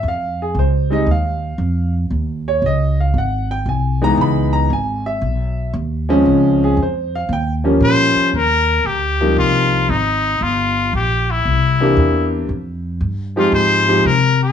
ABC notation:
X:1
M:4/4
L:1/8
Q:"Swing" 1/4=116
K:Dblyd
V:1 name="Muted trumpet"
z8 | z8 | z8 | z6 c2 |
[K:Eb] B2 G2 F2 E2 | F2 G _F4 z | z3 F c2 B A |]
V:2 name="Grand piano"
f A c e f3 z | z d e f _g =g a b | _c' b a _f3 z2 | z A c f g z3 |
[K:Eb] z8 | z8 | z8 |]
V:3 name="Grand piano"
z3 [G,A,CE] z4 | z6 z [_F,A,_CE]- | [_F,A,_CE]2 z4 z [=F,A,=CD]- | [F,A,CD]2 z3 [F,G,B,D]3 |
[K:Eb] z3 [F,G,B,CE]3 z2 | z4 z [=E,B,CDG]3 | z3 [F,A,CEG]2 [F,A,CEG] z2 |]
V:4 name="Upright bass" clef=bass
F,,2 D,,2 E,,2 F,,2 | E,,2 D,,2 A,,,2 C,,2 | D,,2 A,,,2 _C,,2 E,,2 | D,,2 F,,2 E,,2 B,, z |
[K:Eb] E,,2 D,,2 C,,2 A,,,2 | G,,,2 B,,,2 C,,2 =E,,2 | F,,2 G,,2 A,,2 C,2 |]